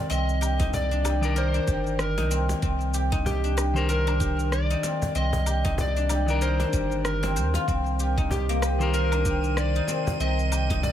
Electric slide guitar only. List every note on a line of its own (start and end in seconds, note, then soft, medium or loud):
0.10 0.74 D#5 loud
0.74 1.33 D5 loud
1.38 2.02 C5 loud
2.00 2.46 A#4 medium
3.26 3.91 G4 medium
3.90 4.54 A#4 medium
4.53 5.15 D5 loud
5.16 5.80 D#5 loud
5.81 6.45 D5 loud
6.42 7.05 C5 loud
7.05 7.51 A#4 medium
8.31 8.90 G4 medium
8.95 9.60 A#4 loud
9.57 10.20 D5 loud
10.21 10.83 D#5 loud
10.83 10.92 D5 loud